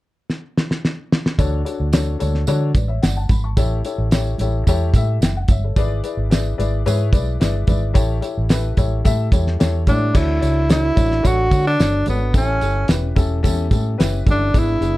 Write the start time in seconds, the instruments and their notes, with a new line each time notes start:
0.30 snare
0.58 snare
0.71 snare
0.85 snare
1.12 snare
1.26 snare
1.38 fingered electric bass D2, upright piano D4 F#4 A4 C#5, kick, closed hi-hat, tambourine, low conga
1.65 upright piano D4 F#4 A4 C#5, closed hi-hat, tambourine, muted conga
1.80 fingered electric bass D2
1.93 upright piano D4 F#4 A4 C#5, snare, closed hi-hat, tambourine
2.19 fingered electric bass D2, upright piano D4 F#4 A4 C#5, closed hi-hat, tambourine, high conga
2.35 snare
2.47 fingered electric bass D3, upright piano D4 F#4 A4 C#5, closed hi-hat, tambourine, high conga, low conga
2.74 fingered electric bass A1, upright piano B4 D5, kick, closed hi-hat, tambourine, muted conga, high conga
2.88 upright piano C#5 E5
3.02 fingered electric bass G1, upright piano D5 F#5, snare, closed hi-hat, tambourine, muted conga, high conga
3.16 upright piano F#5 A5
3.29 fingered electric bass G#1, upright piano B5, kick, closed hi-hat, tambourine, muted conga, high conga, low conga
3.44 upright piano A5 C#6
3.57 fingered electric bass A1, upright piano E4 G4 A4 C#5, kick, closed hi-hat, tambourine, muted conga, low conga
3.84 upright piano E4 G4 A4 C#5, closed hi-hat, tambourine, muted conga
3.98 fingered electric bass A1
4.11 upright piano E4 G4 A4 C#5, snare, closed hi-hat, tambourine
4.38 fingered electric bass A1, upright piano E4 G4 A4 C#5, closed hi-hat, tambourine, muted conga, high conga
4.67 fingered electric bass E2, upright piano E4 G4 A4 C#5, kick, closed hi-hat, tambourine, muted conga, high conga, low conga
4.94 fingered electric bass A2, upright piano E4 G4 A4 E5, kick, closed hi-hat, tambourine, high conga
5.21 fingered electric bass F#1, upright piano E5 G5, snare, closed hi-hat, tambourine, muted conga, high conga
5.37 upright piano F#5
5.48 fingered electric bass G1, upright piano C#5 E5, kick, closed hi-hat, tambourine, high conga, low conga
5.64 upright piano A4 C#5
5.76 fingered electric bass G#1, upright piano E4 G#4 B4 D5, kick, closed hi-hat, tambourine, muted conga, low conga
6.03 upright piano E4 G#4 B4 D5, closed hi-hat, tambourine, muted conga
6.17 fingered electric bass G#1
6.30 upright piano E4 G#4 B4 D5, snare, closed hi-hat, tambourine
6.58 fingered electric bass G#1, upright piano E4 G#4 B4 D5, closed hi-hat, tambourine, high conga
6.86 fingered electric bass G#2, upright piano E4 G#4 B4 C#5, closed hi-hat, tambourine, muted conga, high conga, low conga
7.12 fingered electric bass B1, upright piano E4 G#4 B4 D5, kick, closed hi-hat, tambourine, high conga
7.40 fingered electric bass G1, upright piano E4 G#4 B4 D5, snare, closed hi-hat, tambourine, muted conga, high conga
7.67 fingered electric bass G#1, upright piano E4 G#4 B4 D5, kick, closed hi-hat, tambourine, muted conga, high conga, low conga
7.94 fingered electric bass A1, upright piano E4 G4 A4 C#5, kick, closed hi-hat, tambourine, muted conga, low conga
8.21 upright piano E4 G4 A4 C#5, closed hi-hat, tambourine, muted conga
8.37 fingered electric bass A1
8.49 upright piano E4 G4 A4 B4, snare, closed hi-hat, tambourine
8.77 fingered electric bass A1, upright piano E4 G4 A4 C#5, kick, closed hi-hat, tambourine, muted conga, high conga
9.04 fingered electric bass A2, upright piano E4 G4 A4 E5, kick, closed hi-hat, tambourine, high conga, low conga
9.32 fingered electric bass E2, upright piano E4 G4 A4 C#5, kick, closed hi-hat, tambourine, muted conga, high conga
9.47 snare
9.59 fingered electric bass E2, upright piano E4 G4 A4 C#5, snare, closed hi-hat, tambourine, high conga
9.86 fingered electric bass A2, tenor saxophone D4, upright piano E4 G4 A4 C#5, kick, closed hi-hat, tambourine, muted conga, high conga, low conga
10.14 fingered electric bass D2, upright piano D4 F#4 A4 C#5, tenor saxophone E4, kick, crash, tambourine, muted conga, low conga
10.41 fingered electric bass C#2, upright piano D4 F#4 A4 C#5, closed hi-hat, tambourine, muted conga
10.69 upright piano D4 F#4 A4 C#5, tenor saxophone E4, snare, closed hi-hat, tambourine
10.95 fingered electric bass A1, upright piano D4 F#4 A4 C#5, kick, closed hi-hat, tambourine, muted conga, high conga
11.11 snare
11.23 fingered electric bass A1, upright piano D4 F#4 A4 C#5, tenor saxophone F#4, kick, closed hi-hat, tambourine, high conga, low conga
11.51 fingered electric bass D3, upright piano D4 F#4 A4 C#5, kick, closed hi-hat, tambourine, muted conga, high conga
11.67 tenor saxophone D4
11.79 fingered electric bass G1, upright piano D4 F#4 A4 C#5, snare, closed hi-hat, tambourine
12.06 fingered electric bass G#1, tenor saxophone B3, upright piano D4 F#4 A4 C#5, closed hi-hat, tambourine, muted conga, high conga, low conga
12.33 fingered electric bass A1, upright piano C#4 E4 G4 A4, kick, closed hi-hat, tambourine, muted conga, low conga
12.38 tenor saxophone C#4
12.61 fingered electric bass G1, upright piano E4 G4 A4, closed hi-hat, tambourine
12.88 fingered electric bass E1, upright piano C#4 E4 G4 B4, snare, closed hi-hat, tambourine
13.16 fingered electric bass E1, upright piano C#4 E4 G4 A4, kick, closed hi-hat, tambourine, muted conga, high conga
13.43 fingered electric bass E2, upright piano C#4 E4 G4 A4, kick, closed hi-hat, tambourine, muted conga, high conga, low conga
13.71 fingered electric bass A2, upright piano C#4 E4 G4 A4, kick, closed hi-hat, tambourine, muted conga, high conga
13.98 fingered electric bass F#1, upright piano C#4 E4 G4 B4, snare, closed hi-hat, tambourine
14.26 fingered electric bass G1, upright piano C#4 E4 G4 A4, kick, closed hi-hat, tambourine, high conga, low conga
14.30 tenor saxophone D4
14.53 fingered electric bass G#1, upright piano B3 D4 E4 G#4, kick, closed hi-hat, tambourine, muted conga, low conga
14.58 tenor saxophone E4
14.80 fingered electric bass F#1, upright piano B3 D4 E4 G#4, closed hi-hat, tambourine, muted conga